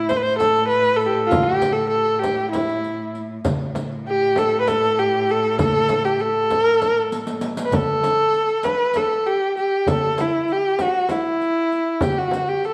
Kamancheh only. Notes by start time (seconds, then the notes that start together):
Already playing: E4
0.09 C5
0.16 B4
0.23 C5
0.38 A4
0.68 B4
0.96 A4
1.06 G4 A4
1.27 F4
1.43 G4
1.73 A4
1.89 A4
2.15 A4
2.19 G4
2.51 E4
4.08 G4
4.38 A4
4.61 B4
4.68 A4
4.99 G4
5.31 A4
5.60 A4
6.05 G4
6.20 A4
6.64 A#4
6.75 A4
6.88 A#4
7.00 A4
7.65 B4
7.75 A4
8.65 B4
8.97 A4
9.26 G4
9.58 G4
9.88 A4
10.21 E4
10.52 G4
10.81 F#4
11.11 E4
12.03 G4
12.18 F#4
12.49 G4
12.65 A4